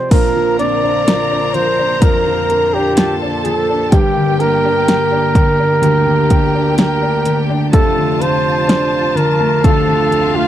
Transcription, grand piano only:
0.00 0.11 C3 soft
0.00 0.13 F3 soft
0.00 0.14 A3 soft
0.00 0.14 D5 medium
0.00 0.14 D#5 medium
0.00 0.14 G5 medium
0.00 0.14 A5 medium
0.13 3.89 A#1 medium
0.13 3.89 A#2 medium
0.36 1.53 F3 soft
0.59 2.46 A#3 medium
0.83 1.30 D4 medium
1.07 2.94 F4 medium
1.31 1.77 D4 medium
1.55 2.01 F3 medium
1.79 2.73 D4 medium
2.02 3.89 F2 medium
2.02 2.24 F3 medium
2.26 3.44 F3 medium
2.50 3.89 A#3 medium
2.74 3.21 D4 soft
2.99 3.91 F4 medium
3.22 3.68 D4 medium
3.46 3.92 F3 soft
3.69 3.92 D4 medium
3.93 7.70 G1 medium
3.93 7.70 G2 medium
4.17 5.34 D3 medium
4.41 4.87 A#3 medium
4.65 5.10 D4 medium
4.89 6.30 A#3 medium
5.11 5.57 D4 medium
5.35 5.80 D3 medium
5.59 6.53 D4 medium
5.82 7.69 D2 medium
5.82 6.05 D3 medium
6.07 7.25 D3 medium
6.31 6.76 A#3 soft
6.54 7.01 D4 medium
6.78 7.71 A#3 medium
7.02 7.48 D4 medium
7.26 7.72 D3 medium
7.50 7.73 D4 medium
7.73 10.48 F1 medium
7.73 10.48 F2 medium
7.97 9.14 D3 soft
8.20 10.07 F3 medium
8.68 10.48 D4 medium
9.15 9.62 D3 medium
9.40 10.33 A3 medium
9.64 10.48 D2 medium
9.64 9.86 D3 medium
9.88 10.48 D3 medium
10.11 10.48 F3 medium
10.35 10.48 A3 soft

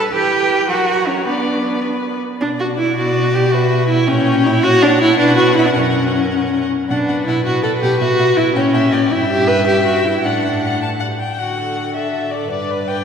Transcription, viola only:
0.13 0.70 E3 medium
0.69 1.27 F#3 medium
1.26 2.21 B3 medium
2.41 2.48 D4 medium
2.59 2.67 F#4 medium
2.78 2.96 E4 medium
2.96 3.36 F#4 medium
3.34 3.53 G4 medium
3.51 3.88 F#4 medium
3.89 4.09 E4 medium
4.08 4.48 C#4 medium
4.46 4.65 E4 medium
4.63 4.84 F#4 loud
4.83 5.01 D4 medium
5.01 5.19 E4 medium
5.19 5.36 D4 medium
5.36 5.55 F#4 medium
5.56 5.67 E4 medium
5.66 5.74 D4 medium
5.75 6.68 C#4 medium
6.89 7.24 D4 medium
7.27 7.45 E4 medium
7.46 7.62 F#4 medium
7.63 7.70 A4 medium
7.82 7.99 G4 medium
8.00 8.38 F#4 medium
8.37 8.54 E4 medium
8.55 9.12 C#4 medium
9.11 9.29 E4 medium
9.30 9.49 G4 medium
9.48 9.66 B4 medium
9.66 9.85 G4 medium
9.86 10.07 F#4 medium
10.05 10.26 E4 medium
10.25 10.82 D4 medium
11.39 11.92 F#4 soft
11.94 12.50 A4 soft
12.51 13.04 B4 soft

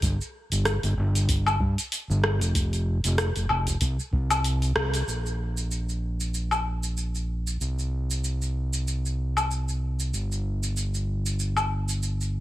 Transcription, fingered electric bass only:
0.03 0.16 G1 loud
0.52 0.74 G1 medium
0.83 0.94 G1 medium
0.97 1.55 G1 medium
1.60 1.74 G2 medium
2.10 2.41 G1 loud
2.41 2.97 F1 medium
3.05 3.27 F1 medium
3.36 3.47 F1 medium
3.50 3.74 F1 medium
3.81 3.95 C2 medium
4.13 4.71 C2 medium
4.76 5.01 C2 loud
5.08 7.58 A#1 medium
7.61 10.10 C2 medium
10.13 12.40 G1 medium

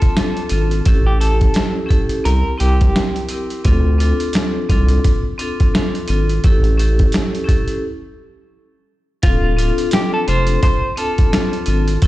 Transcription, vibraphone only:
0.00 0.13 C4 medium
0.00 0.14 D4 medium
0.00 0.14 F4 medium
0.00 0.15 A4 medium
0.16 0.49 C4 medium
0.16 0.49 D4 medium
0.16 0.50 F4 medium
0.16 0.50 A4 medium
0.50 0.83 C4 medium
0.50 0.84 D4 medium
0.50 0.84 F4 medium
0.50 0.85 A4 medium
0.86 1.18 C#4 loud
0.86 1.19 E4 medium
0.86 1.20 G4 medium
0.86 1.20 A4 loud
1.19 1.85 C#4 medium
1.19 1.86 E4 medium
1.19 1.86 G4 medium
1.19 1.87 A4 loud
1.86 2.23 C#4 loud
1.86 2.24 E4 medium
1.86 2.24 G4 medium
1.86 2.25 A4 loud
2.24 2.47 C4 medium
2.24 2.48 E4 medium
2.24 2.48 G4 medium
2.24 2.49 A#4 medium
2.57 3.24 C4 medium
2.57 3.25 E4 medium
2.57 3.25 G4 medium
2.57 3.26 A#4 loud
3.30 3.63 C4 medium
3.30 3.63 E4 medium
3.30 3.64 G4 medium
3.30 3.64 A#4 medium
3.65 3.97 C4 loud
3.65 3.98 D4 medium
3.65 3.98 F4 medium
3.65 3.99 A4 loud
3.98 4.64 C4 medium
3.98 4.65 D4 medium
3.98 4.65 F4 medium
3.98 4.66 A4 loud
4.69 5.20 C4 medium
4.69 5.20 D4 medium
4.69 5.21 F4 medium
4.69 5.21 A4 loud
5.38 5.71 C4 medium
5.38 5.72 D4 medium
5.38 5.72 F4 medium
5.38 5.73 A4 medium
5.74 6.07 C4 medium
5.74 6.07 D4 medium
5.74 6.08 F4 medium
5.74 6.08 A4 medium
6.08 6.41 C4 medium
6.08 6.42 D4 medium
6.08 6.42 F4 medium
6.08 6.43 A4 medium
6.44 6.76 C#4 medium
6.44 6.77 E4 medium
6.44 6.78 G4 medium
6.44 6.78 A4 loud
6.78 7.43 C#4 medium
6.78 7.44 E4 medium
6.78 7.45 G4 medium
6.78 7.45 A4 loud
7.44 7.81 C#4 medium
7.44 7.82 E4 medium
7.44 7.82 G4 medium
7.44 7.83 A4 loud
9.23 9.55 C4 loud
9.23 9.56 D4 medium
9.23 9.57 F4 medium
9.23 9.57 A4 loud
9.56 10.22 C4 loud
9.56 10.23 D4 medium
9.56 10.23 F4 medium
9.56 10.24 A4 loud
10.27 10.78 C4 loud
10.27 10.79 D4 medium
10.27 10.79 F4 medium
10.27 10.80 A4 loud
10.96 11.29 C4 medium
10.96 11.30 D4 medium
10.96 11.30 F4 medium
10.96 11.31 A4 medium
11.32 11.65 C4 medium
11.32 11.65 D4 medium
11.32 11.66 F4 medium
11.32 11.66 A4 medium
11.67 12.00 C4 medium
11.67 12.00 D4 medium
11.67 12.01 F4 medium
11.67 12.01 A4 medium
12.02 12.07 C#4 medium
12.02 12.07 E4 medium

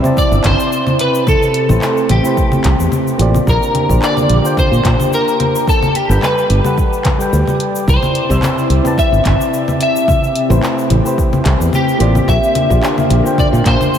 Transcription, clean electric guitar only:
0.00 0.18 E5 loud
0.18 0.43 D5 loud
0.46 0.96 C5 loud
1.01 1.26 B4 loud
1.28 2.10 A4 medium
2.11 3.16 G4 medium
3.49 4.00 A#4 loud
4.04 4.58 D5 loud
4.59 5.14 C5 loud
5.14 5.65 A#4 loud
5.69 5.94 A4 loud
5.96 6.24 G4 medium
6.24 7.57 B4 medium
7.89 8.98 C5 loud
8.99 9.77 E5 loud
9.83 11.43 E5 loud
11.75 12.31 G4 loud
12.29 13.39 E5 loud
13.39 13.47 D5 loud
13.67 13.98 C5 loud

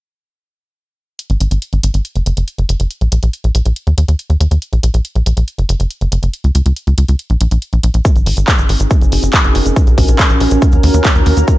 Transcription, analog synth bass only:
1.30 1.37 G#1 medium
1.41 1.47 G#1 medium
1.51 1.58 G#1 medium
1.73 1.80 G#1 medium
1.83 1.90 G#1 medium
1.94 2.01 G#1 medium
2.16 2.22 F#1 medium
2.26 2.33 F#1 loud
2.37 2.44 F#1 medium
2.58 2.65 F#1 medium
2.69 2.76 F#1 medium
2.80 2.87 F#1 medium
3.01 3.08 A#1 medium
3.12 3.19 A#1 medium
3.23 3.30 A#1 medium
3.44 3.51 A#1 medium
3.55 3.62 A#1 loud
3.66 3.72 A#1 medium
3.87 3.94 D#2 medium
3.98 4.05 D#2 loud
4.08 4.15 D#2 medium
4.30 4.37 D#2 medium
4.40 4.47 D#2 medium
4.51 4.58 D#2 medium
4.73 4.80 A#1 medium
4.83 4.90 A#1 medium
4.94 5.01 A#1 medium
5.15 5.22 A#1 medium
5.26 5.33 A#1 medium
5.37 5.44 A#1 medium
5.58 5.65 F#1 medium
5.69 5.76 F#1 loud
5.80 5.87 F#1 medium
6.01 6.08 F#1 medium
6.12 6.19 F#1 loud
6.23 6.30 F#1 medium
6.44 6.51 C#2 medium
6.55 6.62 C#2 medium
6.66 6.73 C#2 medium
6.87 6.94 C#2 medium
6.98 7.05 C#2 medium
7.09 7.15 C#2 medium
7.30 7.37 A#1 medium
7.41 7.48 A#1 loud
7.51 7.58 A#1 medium
7.73 7.80 A#1 medium
7.83 7.90 A#1 loud
7.94 8.01 A#1 medium
8.16 8.22 G#1 medium
8.26 8.33 G#1 medium
8.37 8.44 G#1 medium
8.58 8.65 G#1 medium
8.69 8.76 G#1 medium
8.80 8.87 G#1 medium
9.01 9.08 F#1 medium
9.12 9.19 F#1 loud
9.23 9.30 F#1 medium
9.44 9.51 F#1 medium
9.55 9.62 F#1 loud
9.66 9.72 F#1 medium
9.87 9.94 A#1 medium
9.98 10.05 A#1 medium
10.08 10.15 A#1 medium
10.30 10.37 A#1 medium
10.41 10.47 A#1 loud
10.51 10.58 A#1 medium
10.73 10.80 D#2 medium
10.83 10.90 D#2 loud
10.94 11.01 D#2 medium
11.15 11.22 D#2 medium
11.26 11.33 D#2 loud
11.37 11.44 D#2 medium

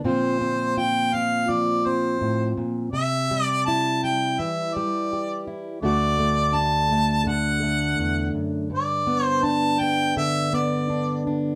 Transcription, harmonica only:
0.06 0.79 C5 medium
0.77 1.15 G5 medium
1.14 1.51 F5 medium
1.50 1.88 D5 medium
1.86 2.58 C5 medium
2.92 3.43 E5 medium
3.43 3.61 D5 medium
3.65 3.99 A5 medium
4.03 4.41 G5 medium
4.39 4.76 E5 medium
4.74 5.47 D5 medium
5.83 6.57 D5 medium
6.56 7.30 A5 medium
7.28 8.36 F#5 medium
8.75 9.25 D5 medium
9.25 9.46 C5 medium
9.44 9.81 A5 medium
9.79 10.16 G5 medium
10.17 10.50 E5 medium
10.54 11.21 D5 medium

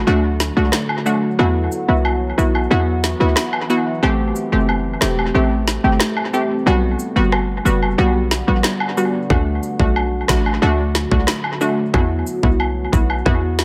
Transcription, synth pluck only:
0.07 0.29 A3 medium
0.07 0.29 D4 medium
0.07 0.29 F#4 loud
0.56 0.78 A3 medium
0.56 0.78 D4 medium
0.56 0.78 F#4 medium
1.06 1.28 A3 medium
1.06 1.28 D4 medium
1.06 1.28 F#4 medium
1.39 1.84 B3 medium
1.39 1.84 E4 medium
1.39 1.85 F#4 loud
1.88 2.34 B3 medium
1.88 2.34 E4 medium
1.88 2.34 F#4 medium
2.38 2.68 B3 medium
2.38 2.68 E4 medium
2.38 2.68 F#4 medium
2.71 2.92 B3 medium
2.71 2.93 E4 medium
2.71 2.93 F#4 loud
3.20 3.42 B3 medium
3.20 3.42 E4 medium
3.20 3.42 F#4 medium
3.69 3.91 B3 medium
3.69 3.91 E4 medium
3.69 3.92 F#4 medium
4.03 4.48 A3 loud
4.03 4.48 C4 medium
4.03 4.48 G4 loud
4.52 4.98 A3 medium
4.52 4.98 C4 medium
4.52 4.98 G4 medium
5.01 5.32 A3 medium
5.01 5.32 C4 medium
5.01 5.32 G4 medium
5.34 5.56 A3 medium
5.34 5.56 C4 medium
5.34 5.57 G4 loud
5.84 6.06 A3 medium
5.84 6.06 C4 medium
5.84 6.06 G4 medium
6.33 6.55 A3 medium
6.33 6.55 C4 medium
6.33 6.55 G4 medium
6.66 7.12 G3 medium
6.66 7.12 B3 medium
6.66 7.12 F#4 loud
7.16 7.61 G3 medium
7.16 7.61 B3 medium
7.16 7.62 F#4 medium
7.65 7.96 G3 medium
7.65 7.96 B3 medium
7.65 7.96 F#4 medium
7.98 8.20 G3 medium
7.98 8.20 B3 medium
7.98 8.20 F#4 loud
8.47 8.69 G3 medium
8.47 8.69 B3 medium
8.47 8.70 F#4 medium
8.97 9.19 G3 medium
8.97 9.19 B3 medium
8.97 9.19 F#4 medium
9.30 9.76 A3 medium
9.30 9.76 D4 medium
9.30 9.76 F#4 loud
9.79 10.25 A3 medium
9.79 10.25 D4 medium
9.79 10.25 F#4 medium
10.29 10.59 A3 medium
10.29 10.59 D4 medium
10.29 10.60 F#4 medium
10.62 10.84 A3 loud
10.62 10.84 D4 medium
10.62 10.84 F#4 loud
11.11 11.33 A3 medium
11.11 11.33 D4 medium
11.11 11.33 F#4 medium
11.61 11.83 A3 medium
11.61 11.83 D4 medium
11.61 11.83 F#4 medium
11.94 12.39 B3 medium
11.94 12.39 E4 medium
11.94 12.40 F#4 loud
12.43 12.89 B3 medium
12.43 12.89 E4 medium
12.43 12.89 F#4 medium
12.92 13.23 B3 medium
12.92 13.23 E4 medium
12.92 13.23 F#4 medium
13.25 13.47 B3 medium
13.25 13.47 E4 medium
13.25 13.48 F#4 loud

